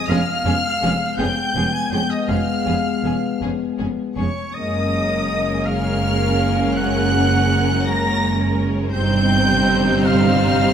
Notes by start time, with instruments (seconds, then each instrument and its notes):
Already playing: oboe D#5, violin section D#6
0.08 double bass section F1, cello section F2, french horn section G#3 B3, viola section G#3 B3, violin section C#4 G#4 F6, oboe F5, flute section F5
0.45 double bass section F1, cello section F2, viola section G#3 B3, violin section C#4 G#4
0.82 double bass section F1, cello section F2, viola section G#3 B3, violin section C#4 G#4
1.18 double bass section F1, cello section F2, viola section G#3 B3, violin section C#4 G#4 G6, oboe G5, flute section G5
1.55 double bass section F1, cello section F2, viola section G#3 B3, violin section C#4 G#4
1.72 oboe G#5, flute section G#5, violin section G#6
1.91 double bass section F1, cello section F2, viola section G#3 B3, violin section C#4 G#4 G6, oboe G5, flute section G5
2.10 oboe D#5, flute section D#5, violin section D#6
2.28 double bass section F1, cello section F2, viola section G#3 B3, violin section C#4 G#4 F6, oboe F5, flute section F5
2.65 double bass section F1, cello section F2, viola section G#3 B3, violin section C#4 G#4
3.03 double bass section F1, cello section F2, viola section G#3 B3, violin section C#4 G#4
3.41 double bass section F1, cello section F2, viola section G#3 B3, violin section C#4 G#4
3.78 double bass section F1, cello section F2, viola section G#3 B3, violin section C#4 G#4
4.16 double bass section F1, cello section F2, viola section G#3 B3, violin section C#4 G#4 C#6, oboe C#5, flute section C#5
4.54 double bass section F#1, cello section F#2, french horn section G#3 A#3, viola section G#3 C#4, violin section C#4 A#4 D#6, oboe D#5, flute section D#5
5.66 oboe F5, flute section F5, violin section F6
6.76 oboe F#5, flute section F#5, violin section F#6
7.85 oboe A#5, flute section A#5, violin section A#6
8.92 double bass section G1, cello section G2, timpani C3, viola section G3 C4, french horn section G3 C4, violin section D#4 C5 G6, oboe G5, flute section G5
9.01 timpani C3
9.08 timpani C3
9.16 timpani C3
9.24 timpani C3
9.30 timpani C3
9.37 timpani C3
9.46 timpani C3
9.53 timpani C3
9.69 timpani C3
9.76 timpani C3
9.85 timpani C3
10.00 timpani C3
10.04 timpani C3, flute section F5, oboe F5, violin section F6
10.15 timpani C3
10.23 timpani C3
10.30 timpani C3
10.38 timpani C3
10.46 timpani C3
10.53 timpani C3
10.62 timpani C3
10.70 timpani C3